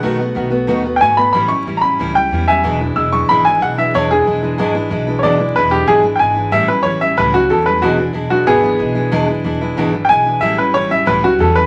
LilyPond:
<<
  \new Staff \with { instrumentName = "Upright piano" } { \time 4/4 \key e \mixolydian \tempo 4 = 185 fis''8 r2 r8 <g'' gis''>8 b''8 | b''8 cis'''4 <ais'' b''>4 g''4 <e'' gis''>8~ | <e'' gis''>8 r8 e'''8 cis'''8 b''8 gis''8 fis''8 e''8 | cis''8 gis'2 r4. |
<cis'' d''>4 b'8 g'8 gis'8 r8 <g'' gis''>4 | e''8 b'8 cis''8 e''8 b'8 fis'8 a'8 b'8 | fis'8 r4 fis'8 <b gis'>2 | r2. <g'' gis''>4 |
e''8 b'8 cis''8 e''8 b'8 fis'8 a'8 b'8 | }
  \new Staff \with { instrumentName = "Steel-string acoustic guitar" } { \time 4/4 \key e \mixolydian <b, dis a b fis'>8 <a b fis'>8 <dis a b fis'>8 <a b fis'>8 <b, dis a b fis'>8 <a b fis'>8 <dis a b fis'>8 <a b fis'>8 | <a, e g cis' e'>8 <g cis' e'>8 <e g cis' e'>8 <g cis' e'>8 <a, e g cis' e'>8 <g cis' e'>8 <e g cis' e'>8 <g cis' e'>8 | <e, b, e gis d' e'>8 <e gis d' e'>8 <e gis d' e'>8 <e gis d' e'>8 <e, b, e gis d' e'>8 <e gis d' e'>8 <e gis d' e'>8 <e gis d' e'>8 | <e, b, e gis d' e'>8 <e gis d' e'>8 <e gis d' e'>8 <e gis d' e'>8 <e, b, e gis d' e'>8 <e gis d' e'>8 <e gis d' e'>8 <e gis d' e'>8 |
<e, b, e gis d' e'>8 <e gis d' e'>8 <e gis d' e'>8 <e gis d' e'>8 <e, b, e gis d' e'>8 <e gis d' e'>8 <e gis d' e'>8 <e gis d' e'>8 | <a, e g cis' e'>8 <g cis' e'>8 <e g cis' e'>8 <g cis' e'>8 <a, e g cis' e'>8 <g cis' e'>8 <e g cis' e'>8 <g cis' e'>8 | <e, b, e gis d' e'>8 <e gis d' e'>8 <e gis d' e'>8 <e gis d' e'>8 <e, b, e gis d' e'>8 <e gis d' e'>8 <e gis d' e'>8 <e gis d' e'>8 | <e, b, e gis d' e'>8 <e gis d' e'>8 <e gis d' e'>8 <e gis d' e'>8 <e, b, e gis d' e'>8 <e gis d' e'>8 <e gis d' e'>8 <e gis d' e'>8 |
<a, e g cis' e'>8 <g cis' e'>8 <e g cis' e'>8 <g cis' e'>8 <a, e g cis' e'>8 <g cis' e'>8 <e g cis' e'>8 <g cis' e'>8 | }
  \new Staff \with { instrumentName = "Upright bass" } { \clef bass \time 4/4 \key e \mixolydian b,,4 b,,4 dis,4 gis,,4 | a,,4 a,,4 cis,4 e,4 | e,,4 e,,4 gis,,4 b,,4 | e,,4 e,,4 gis,,4 b,,4 |
e,,4 e,,4 gis,,4 gis,,4 | a,,4 a,,4 cis,4 e,4 | e,,4 e,,4 gis,,4 b,,4 | e,,4 e,,4 gis,,4 b,,4 |
a,,4 a,,4 cis,4 e,4 | }
>>